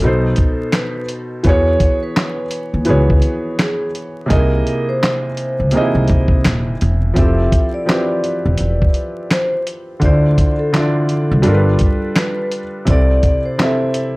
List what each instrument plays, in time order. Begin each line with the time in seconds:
Already playing: vibraphone A4
0.02 upright bass B1, felt piano B2 B3 D#4
0.06 felt piano A4 C5
0.36 kick, closed hi-hat
0.73 vibraphone B4, snare, clap, closed hi-hat
1.08 closed hi-hat
1.43 upright bass E2, felt piano E3 B3 F#4 G#4, vibraphone C#5, kick, closed hi-hat
1.49 felt piano C#5
1.80 kick, closed hi-hat
2.03 vibraphone B4
2.16 snare, clap, closed hi-hat
2.51 closed hi-hat
2.74 upright bass D#2
2.85 upright bass C#2, felt piano E3 B3 F#4, closed hi-hat
2.89 felt piano G#4 C#5
3.10 kick
3.22 closed hi-hat
3.59 vibraphone G#4, snare, clap, closed hi-hat
3.95 closed hi-hat
4.26 felt piano C3 A#3 D#4 G#4
4.30 upright bass C2, vibraphone A#4, felt piano D#5, kick, closed hi-hat
4.35 felt piano E4
4.67 closed hi-hat
4.89 vibraphone C5
5.03 snare, clap, closed hi-hat
5.37 closed hi-hat
5.60 upright bass C#2
5.71 felt piano C3 A#3 D#4, closed hi-hat
5.76 felt piano G#4 D#5
5.81 felt piano E4
5.95 upright bass C2
6.08 upright bass C3, kick, closed hi-hat
6.28 kick
6.45 upright bass D#1, snare, clap, closed hi-hat
6.81 upright bass E1, closed hi-hat
7.14 upright bass F1, felt piano F3 C4 E4, vibraphone E5, kick, closed hi-hat
7.18 felt piano G4 A4
7.52 kick, closed hi-hat
7.74 vibraphone D5
7.86 felt piano F3 C4 E4, snare, clap, closed hi-hat
7.90 felt piano G4 B4
8.24 closed hi-hat
8.46 upright bass E1
8.58 upright bass E1, closed hi-hat
8.82 kick
8.94 closed hi-hat
9.31 vibraphone C5, snare, clap, closed hi-hat
9.67 closed hi-hat
10.00 upright bass D2, felt piano D3 D4 E4, vibraphone D5, kick, closed hi-hat
10.04 felt piano F4 C5
10.38 kick, closed hi-hat
10.59 vibraphone A4
10.73 felt piano D3 D4 E4 F4, snare, clap, closed hi-hat
10.78 felt piano D5
11.09 closed hi-hat
11.31 upright bass C2
11.42 felt piano G3 D4 F4 A4, closed hi-hat
11.46 upright bass G1, felt piano A#4
11.54 felt piano B4
11.79 kick, closed hi-hat
12.16 vibraphone B4, snare, clap, closed hi-hat
12.52 closed hi-hat
12.85 upright bass C2, felt piano C3 C4 E4 A4, kick, closed hi-hat
12.90 vibraphone D5, felt piano D5
13.23 kick, closed hi-hat
13.46 vibraphone C5
13.58 felt piano C3 C4 E4 A4, snare, clap, closed hi-hat
13.63 felt piano E5
13.94 closed hi-hat